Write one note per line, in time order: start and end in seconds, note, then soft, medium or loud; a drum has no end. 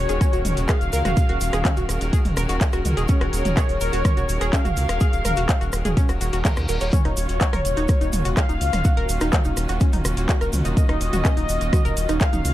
0.00 6.89 D#3 medium
0.00 6.89 C#4 medium
0.00 6.89 F#4 medium
0.00 6.89 G#4 medium
0.00 6.89 A#4 medium
0.00 0.59 C#5 loud
0.09 0.19 D#1 loud
0.09 0.13 G#4 medium
0.09 closed hi-hat medium
0.09 cabasa soft
0.21 0.32 C#4 medium
0.21 kick loud
0.21 cross-stick medium
0.21 closed hi-hat medium
0.21 cabasa soft
0.33 0.43 D#1 medium
0.33 0.37 F#4 medium
0.33 closed hi-hat soft
0.33 cabasa soft
0.45 0.55 D#1 loud
0.45 mid tom loud
0.45 open hi-hat loud
0.45 cabasa medium
0.57 0.67 D#1 medium
0.57 closed hi-hat medium
0.57 cabasa soft
0.68 0.76 G#4 medium
0.68 2.03 F5 loud
0.68 kick loud
0.68 cross-stick medium
0.68 clap loud
0.68 closed hi-hat medium
0.68 cabasa medium
0.81 0.91 D#1 medium
0.81 closed hi-hat soft
0.81 cabasa soft
0.93 1.03 C#2 loud
0.93 1.00 A#4 loud
0.93 open hi-hat loud
0.93 cabasa loud
1.05 1.15 D#1 medium
1.05 1.12 F#4 medium
1.05 cross-stick medium
1.05 closed hi-hat medium
1.05 mid tom loud
1.05 cabasa soft
1.17 kick loud
1.17 closed hi-hat medium
1.17 cabasa medium
1.29 1.39 D#1 medium
1.29 1.36 F#4 medium
1.29 closed hi-hat soft
1.41 1.51 D#1 loud
1.41 open hi-hat loud
1.41 cabasa medium
1.53 1.63 D#1 loud
1.53 1.57 G#4 medium
1.53 cross-stick medium
1.53 closed hi-hat medium
1.53 cabasa soft
1.65 1.76 C#4 medium
1.65 kick loud
1.65 clap loud
1.65 closed hi-hat medium
1.65 mid tom loud
1.65 cabasa medium
1.77 1.87 D#1 medium
1.77 1.81 F#4 medium
1.77 closed hi-hat soft
1.77 cabasa soft
1.89 1.99 D#1 loud
1.89 cross-stick medium
1.89 open hi-hat loud
1.89 cabasa medium
2.01 2.11 D#1 loud
2.01 closed hi-hat medium
2.01 cabasa soft
2.13 2.20 G#4 medium
2.13 kick loud
2.13 closed hi-hat medium
2.13 cabasa medium
2.25 2.35 D#1 medium
2.25 mid tom loud
2.25 open hi-hat medium
2.25 cabasa soft
2.37 2.47 D#1 loud
2.37 2.44 A#4 loud
2.37 cross-stick medium
2.37 open hi-hat loud
2.37 cabasa loud
2.49 2.59 D#1 medium
2.49 2.56 F#4 medium
2.49 closed hi-hat medium
2.49 cabasa soft
2.61 kick loud
2.61 clap loud
2.61 closed hi-hat medium
2.61 cabasa soft
2.73 2.83 D#1 medium
2.73 2.80 F#4 medium
2.73 cross-stick medium
2.73 closed hi-hat soft
2.73 cabasa soft
2.85 2.95 C#2 loud
2.85 mid tom loud
2.85 open hi-hat loud
2.85 cabasa medium
2.97 3.07 D#1 medium
2.97 3.01 G#4 medium
2.97 closed hi-hat medium
2.97 cabasa soft
3.08 3.20 C#4 medium
3.08 4.54 C#5 loud
3.08 kick loud
3.08 closed hi-hat medium
3.08 cabasa medium
3.21 3.31 D#1 medium
3.21 3.25 F#4 medium
3.21 cross-stick medium
3.21 closed hi-hat soft
3.33 3.43 D#1 loud
3.33 open hi-hat loud
3.33 cabasa medium
3.45 3.55 D#1 medium
3.45 closed hi-hat medium
3.45 mid tom loud
3.45 cabasa soft
3.57 3.64 G#4 medium
3.57 kick loud
3.57 cross-stick medium
3.57 clap loud
3.57 closed hi-hat medium
3.57 cabasa soft
3.69 3.79 D#1 medium
3.69 open hi-hat medium
3.69 cabasa soft
3.81 3.91 D#1 loud
3.81 3.88 A#4 loud
3.81 open hi-hat loud
3.81 cabasa medium
3.93 4.03 D#1 loud
3.93 4.00 F#4 medium
3.93 closed hi-hat medium
3.93 cabasa soft
4.05 kick loud
4.05 cross-stick medium
4.05 closed hi-hat medium
4.05 mid tom loud
4.05 cabasa medium
4.17 4.27 D#1 medium
4.17 4.24 F#4 medium
4.17 closed hi-hat soft
4.17 cabasa soft
4.29 4.39 D#1 loud
4.29 open hi-hat loud
4.29 cabasa medium
4.41 4.51 D#1 loud
4.41 4.45 G#4 medium
4.41 cross-stick medium
4.41 closed hi-hat medium
4.41 cabasa soft
4.53 4.64 C#4 medium
4.53 5.87 F5 loud
4.53 kick loud
4.53 clap loud
4.53 closed hi-hat medium
4.53 cabasa soft
4.65 4.75 D#1 medium
4.65 4.69 F#4 medium
4.65 closed hi-hat soft
4.65 mid tom loud
4.65 cabasa soft
4.77 4.87 C#2 loud
4.77 open hi-hat loud
4.77 cabasa medium
4.89 4.99 D#1 medium
4.89 cross-stick medium
4.89 closed hi-hat medium
4.89 cabasa soft
5.00 5.08 G#4 medium
5.00 kick loud
5.00 closed hi-hat medium
5.00 cabasa medium
5.13 5.23 D#1 medium
5.13 closed hi-hat soft
5.13 cabasa soft
5.25 5.35 D#1 loud
5.25 5.32 A#4 loud
5.25 cross-stick medium
5.25 mid tom loud
5.25 open hi-hat loud
5.25 cabasa medium
5.36 5.47 D#1 medium
5.36 5.44 F#4 medium
5.36 closed hi-hat medium
5.36 cabasa soft
5.49 kick loud
5.49 clap loud
5.49 closed hi-hat medium
5.49 cabasa medium
5.61 5.71 D#1 medium
5.61 5.68 F#4 medium
5.61 closed hi-hat soft
5.61 cabasa soft
5.72 5.83 D#1 loud
5.72 cross-stick medium
5.72 open hi-hat loud
5.72 cabasa loud
5.85 5.95 D#1 loud
5.85 5.89 G#4 medium
5.85 closed hi-hat medium
5.85 mid tom loud
5.85 cabasa soft
5.97 6.08 C#4 medium
5.97 kick loud
5.97 closed hi-hat medium
5.97 reverse cymbal medium
5.97 cabasa soft
6.09 6.19 D#1 medium
6.09 6.13 F#4 medium
6.09 cross-stick medium
6.09 open hi-hat medium
6.09 cabasa soft
6.21 6.31 D#1 loud
6.21 6.28 F#4 medium
6.21 open hi-hat loud
6.21 cabasa medium
6.33 6.43 D#1 medium
6.33 6.40 F#4 medium
6.33 closed hi-hat medium
6.33 cabasa soft
6.45 6.52 A#4 medium
6.45 kick loud
6.45 clap loud
6.45 closed hi-hat medium
6.45 mid tom medium
6.45 cabasa medium
6.57 6.67 D#2 medium
6.57 cross-stick medium
6.57 closed hi-hat soft
6.57 cabasa soft
6.68 6.79 D#1 loud
6.68 6.76 A#4 medium
6.68 open hi-hat loud
6.68 cabasa medium
6.80 6.91 D#1 medium
6.80 6.88 C#5 medium
6.80 closed hi-hat medium
6.80 cabasa soft
6.93 12.54 D#3 medium
6.93 12.54 A#3 medium
6.93 7.04 C#4 medium
6.93 12.54 C#4 medium
6.93 12.54 F4 medium
6.93 12.54 F#4 medium
6.93 8.28 C#5 loud
6.93 kick loud
6.93 closed hi-hat medium
6.93 mid tom medium
6.93 cabasa medium
7.05 7.15 D#1 medium
7.05 7.09 D#4 medium
7.05 cross-stick soft
7.05 closed hi-hat soft
7.17 7.27 D#1 loud
7.17 open hi-hat loud
7.17 cabasa loud
7.29 7.39 D#1 loud
7.29 closed hi-hat medium
7.29 cabasa soft
7.41 7.48 F#4 medium
7.41 kick loud
7.41 clap loud
7.41 closed hi-hat medium
7.41 cabasa medium
7.53 7.63 D#1 medium
7.53 7.60 A#4 loud
7.53 cross-stick medium
7.53 mid tom medium
7.53 open hi-hat medium
7.53 cabasa soft
7.65 7.75 D#1 loud
7.65 open hi-hat loud
7.65 cabasa loud
7.77 7.87 D#1 medium
7.77 7.84 D#4 medium
7.77 closed hi-hat medium
7.77 cabasa soft
7.88 kick loud
7.88 cross-stick medium
7.88 closed hi-hat medium
7.88 cabasa medium
8.01 8.11 D#1 medium
8.01 8.08 D#4 medium
8.01 closed hi-hat soft
8.01 cabasa soft
8.13 8.23 D#1 loud
8.13 mid tom loud
8.13 open hi-hat loud
8.13 cabasa medium
8.25 8.35 D#1 medium
8.25 8.29 F#4 medium
8.25 closed hi-hat medium
8.25 cabasa soft
8.37 8.48 C#4 medium
8.37 9.71 F5 loud
8.37 kick loud
8.37 cross-stick medium
8.37 clap loud
8.37 closed hi-hat medium
8.37 cabasa soft
8.49 8.59 D#1 medium
8.49 8.53 D#4 medium
8.49 closed hi-hat soft
8.49 cabasa soft
8.61 8.71 C#2 loud
8.61 open hi-hat loud
8.61 cabasa medium
8.73 8.83 D#1 medium
8.73 cross-stick medium
8.73 closed hi-hat medium
8.73 mid tom loud
8.73 cabasa soft
8.84 8.92 F#4 medium
8.84 kick loud
8.84 closed hi-hat medium
8.84 cabasa medium
8.97 9.07 D#1 medium
8.97 9.04 A#4 loud
8.97 closed hi-hat soft
9.09 9.19 D#1 loud
9.09 open hi-hat loud
9.09 cabasa loud
9.21 9.31 D#1 medium
9.21 9.28 D#4 medium
9.21 cross-stick medium
9.21 closed hi-hat medium
9.21 cabasa soft
9.32 kick loud
9.32 clap loud
9.32 closed hi-hat medium
9.32 mid tom medium
9.32 cabasa medium
9.44 9.55 D#1 medium
9.44 9.52 D#4 medium
9.44 closed hi-hat soft
9.44 cabasa soft
9.57 9.67 D#1 loud
9.57 cross-stick medium
9.57 open hi-hat loud
9.57 cabasa loud
9.69 9.79 D#1 loud
9.69 9.73 F#4 medium
9.69 closed hi-hat medium
9.69 cabasa soft
9.80 9.92 C#4 medium
9.80 kick loud
9.80 closed hi-hat medium
9.80 cabasa medium
9.93 10.03 D#1 medium
9.93 9.97 D#4 medium
9.93 mid tom loud
9.93 open hi-hat medium
9.93 cabasa soft
10.05 10.15 D#1 loud
10.05 cross-stick medium
10.05 open hi-hat loud
10.05 cabasa loud
10.17 10.27 D#1 loud
10.17 closed hi-hat medium
10.17 cabasa soft
10.29 10.36 F#4 medium
10.29 kick loud
10.29 clap loud
10.29 closed hi-hat medium
10.29 cabasa medium
10.41 10.51 D#1 medium
10.41 10.48 A#4 loud
10.41 cross-stick soft
10.41 closed hi-hat soft
10.41 cabasa soft
10.53 10.63 C#2 loud
10.53 mid tom medium
10.53 open hi-hat loud
10.53 cabasa loud
10.65 10.75 D#1 medium
10.65 10.72 D#4 medium
10.65 closed hi-hat medium
10.65 cabasa soft
10.77 12.12 D#5 loud
10.77 kick loud
10.77 closed hi-hat medium
10.77 cabasa medium
10.89 10.99 D#1 medium
10.89 10.96 D#4 medium
10.89 cross-stick medium
10.89 closed hi-hat soft
11.01 11.11 D#1 loud
11.01 open hi-hat loud
11.01 cabasa medium
11.13 11.23 D#1 loud
11.13 11.17 F#4 medium
11.13 closed hi-hat medium
11.13 mid tom medium
11.13 cabasa soft
11.25 11.36 C#4 medium
11.25 kick loud
11.25 cross-stick medium
11.25 clap loud
11.25 closed hi-hat medium
11.25 cabasa medium
11.37 11.47 D#1 medium
11.37 11.41 D#4 medium
11.37 open hi-hat medium
11.37 cabasa soft
11.49 11.59 D#1 loud
11.49 open hi-hat loud
11.49 cabasa medium
11.61 11.71 D#1 loud
11.61 closed hi-hat medium
11.61 cabasa soft
11.73 11.80 F#4 medium
11.73 kick loud
11.73 cross-stick medium
11.73 closed hi-hat medium
11.73 mid tom medium
11.73 cabasa medium
11.85 11.95 D#1 medium
11.85 11.92 A#4 loud
11.85 closed hi-hat soft
11.85 cabasa soft
11.97 12.07 D#1 loud
11.97 open hi-hat loud
11.97 cabasa loud
12.09 12.19 D#1 loud
12.09 12.16 D#4 medium
12.09 cross-stick medium
12.09 closed hi-hat medium
12.09 cabasa soft
12.20 12.54 F5 loud
12.20 kick loud
12.20 clap loud
12.20 closed hi-hat medium
12.20 cabasa medium
12.33 12.43 D#1 medium
12.33 12.40 D#4 medium
12.33 closed hi-hat soft
12.33 mid tom medium
12.33 cabasa soft
12.45 12.54 C#2 loud
12.45 open hi-hat loud
12.45 cabasa loud